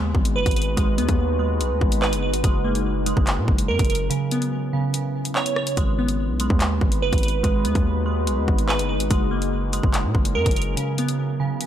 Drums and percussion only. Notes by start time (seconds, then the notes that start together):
0.15 kick
0.25 closed hi-hat
0.46 kick, closed hi-hat
0.51 closed hi-hat
0.56 closed hi-hat
0.62 closed hi-hat
0.77 kick, closed hi-hat
0.98 closed hi-hat
1.09 kick, closed hi-hat
1.61 closed hi-hat
1.81 kick
1.92 closed hi-hat
2.02 clap
2.13 closed hi-hat
2.34 closed hi-hat
2.44 kick, closed hi-hat
2.75 closed hi-hat
3.06 closed hi-hat
3.17 kick
3.27 clap, closed hi-hat
3.48 kick
3.58 closed hi-hat
3.79 kick, closed hi-hat
3.85 closed hi-hat
3.90 closed hi-hat
3.95 closed hi-hat
4.11 closed hi-hat
4.31 closed hi-hat
4.42 closed hi-hat
4.94 closed hi-hat
5.25 closed hi-hat
5.36 clap
5.46 closed hi-hat
5.56 cross-stick
5.67 closed hi-hat
5.77 kick, closed hi-hat
6.08 closed hi-hat
6.40 closed hi-hat
6.50 kick
6.61 clap, closed hi-hat
6.81 kick
6.92 closed hi-hat
7.13 kick, closed hi-hat
7.18 closed hi-hat
7.23 closed hi-hat
7.28 closed hi-hat
7.44 kick, closed hi-hat
7.65 closed hi-hat
7.75 kick, closed hi-hat
8.27 closed hi-hat
8.48 kick
8.59 closed hi-hat
8.69 clap
8.79 closed hi-hat
9.00 closed hi-hat
9.11 kick, closed hi-hat
9.42 closed hi-hat
9.73 closed hi-hat
9.83 kick
9.94 clap, closed hi-hat
10.15 kick
10.25 closed hi-hat
10.46 kick, closed hi-hat
10.51 closed hi-hat
10.56 closed hi-hat
10.62 closed hi-hat
10.77 closed hi-hat
10.98 closed hi-hat
11.09 closed hi-hat
11.61 closed hi-hat